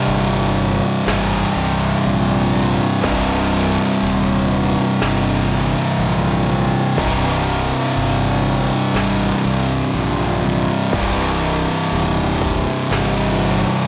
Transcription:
Already playing: distorted electric guitar C2 G2 C3 G3 D#4
0.07 fingered electric bass G1, crash
0.57 crash
1.05 fingered electric bass G#1, distorted electric guitar C2 G2 C3 G3 D#4, snare, crash
1.56 fingered electric bass C2, crash
2.06 fingered electric bass A#1, crash
2.53 distorted electric guitar G2 C3, crash
2.57 distorted electric guitar C2
3.01 fingered electric bass C1, distorted electric guitar C2 G2 C3 G3 D#4, kick, crash
3.54 crash
4.02 fingered electric bass D#1, crash
4.52 crash
4.99 fingered electric bass G1, distorted electric guitar C2 G2 C3 G3 D#4, snare, crash
5.51 crash
5.99 fingered electric bass A#1, crash
6.48 distorted electric guitar G2 C3, crash
6.52 distorted electric guitar C2
6.97 fingered electric bass C1, distorted electric guitar C2 G2 C3 G3 D#4, kick, crash
7.46 crash
7.96 fingered electric bass G1, crash
8.46 crash
8.94 fingered electric bass G#1, distorted electric guitar C2 G2 C3 G3 D#4, snare, crash
9.45 fingered electric bass C2, crash
9.94 fingered electric bass A#1, crash
10.43 distorted electric guitar G2 C3, crash
10.47 distorted electric guitar C2
10.92 fingered electric bass C1, distorted electric guitar C2 G2 C3 G3 D#4, kick, crash
11.43 crash
11.92 fingered electric bass D#1, crash
12.42 kick, crash
12.90 fingered electric bass G1, distorted electric guitar C2 G2 C3 G3 D#4, snare, crash
13.40 crash

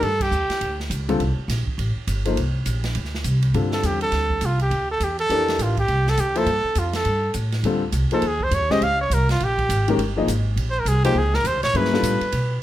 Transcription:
0.02 upright bass G2, trumpet A4, ride
0.21 trumpet G4, kick, crash
0.31 upright bass D#2, hi-hat pedal
0.49 muted upright bass stroke, snare, ride
0.61 upright bass D2, ride
0.80 snare
0.90 upright bass C#2, hi-hat pedal, ride
1.09 grand piano D3 G3 C4 F4 A4, ride
1.20 upright bass C2, ride
1.37 muted upright bass stroke
1.48 upright bass A#1, snare, hi-hat pedal, ride
1.67 muted upright bass stroke, kick
1.78 upright bass A1, ride
1.96 muted upright bass stroke
2.07 upright bass G1, hi-hat pedal, ride
2.25 grand piano F3 A#3 D#4 A4 C5, ride
2.37 upright bass C2, ride
2.66 upright bass A#1, hi-hat pedal, ride
2.84 snare, ride
2.95 upright bass D2, ride
3.05 snare
3.15 snare
3.24 upright bass C2, hi-hat pedal, ride
3.42 ride
3.54 upright bass G2, grand piano D3 G3 C4 F4 A4, ride
3.72 trumpet A4, snare
3.83 upright bass E2, trumpet G4, hi-hat pedal, ride
4.01 trumpet A4, ride
4.12 upright bass D2, snare, ride
4.30 kick
4.41 upright bass C2, hi-hat pedal, ride
4.45 trumpet F4
4.59 trumpet G4, ride
4.71 upright bass D2, ride
4.91 trumpet A4
5.00 upright bass E2, trumpet G4, hi-hat pedal, ride
5.19 trumpet A4, ride
5.29 upright bass F2, grand piano E3 D4 G4 A4 A#4, ride
5.48 snare, ride
5.58 upright bass A1, trumpet F4, hi-hat pedal, ride
5.77 trumpet G4, kick, ride
5.88 upright bass C2, ride
6.07 trumpet A4, snare
6.17 upright bass D2, trumpet G4, hi-hat pedal, ride
6.35 grand piano F3 A#3 E4 A4 C5, trumpet A4, ride
6.46 upright bass G2, ride
6.64 muted upright bass stroke
6.75 upright bass F2, trumpet F4, hi-hat pedal, ride
6.93 trumpet A4, snare, ride
7.05 upright bass G2, ride
7.34 upright bass A2, hi-hat pedal, ride
7.52 snare, ride
7.63 upright bass D2, grand piano D3 G3 C4 F4 A4, ride
7.92 upright bass C2, hi-hat pedal, ride
8.11 grand piano F3 A#3 D#4 G#4 C5, trumpet A4, muted upright bass stroke, ride
8.22 upright bass D#2, ride
8.27 trumpet G#4
8.40 trumpet C5, kick
8.51 upright bass F2, trumpet C#5, hi-hat pedal, ride
8.61 upright bass D#2
8.70 upright bass C#2, grand piano G#3 C#4 G4 C5 D#5, trumpet D#5, snare
8.81 upright bass C#2, trumpet F5, ride
9.01 trumpet C#5
9.10 upright bass C2, trumpet A#4, hi-hat pedal, ride
9.29 trumpet F4, snare, ride
9.40 upright bass A#1, trumpet G4, ride
9.58 kick, ride
9.69 upright bass G#1, hi-hat pedal, ride
9.88 grand piano D#3 G#3 C#4 G4 A#4, ride
9.98 upright bass G1, ride
10.16 grand piano F3 A#3 D#4 G#4 D#5
10.27 upright bass G#1, hi-hat pedal, ride
10.56 upright bass A#1, ride
10.70 trumpet C5
10.80 trumpet A#4
10.85 upright bass C2, trumpet G#4, hi-hat pedal, ride
11.04 grand piano F3 A#3 D#4 G#4 C5, trumpet G4, ride
11.15 upright bass C#2, trumpet G#4
11.34 trumpet A#4, snare
11.44 upright bass D#2, trumpet C5, hi-hat pedal, ride
11.54 upright bass C#2
11.63 upright bass A#1, trumpet C#5, snare, ride
11.74 upright bass G2, grand piano F#3 A#3 C#4 E4 G#4, trumpet B4, ride
11.85 snare
11.93 grand piano G3 B3 D4 F4 A4, snare
12.02 upright bass A2, hi-hat pedal, ride
12.21 muted upright bass stroke, ride
12.32 upright bass B2, ride

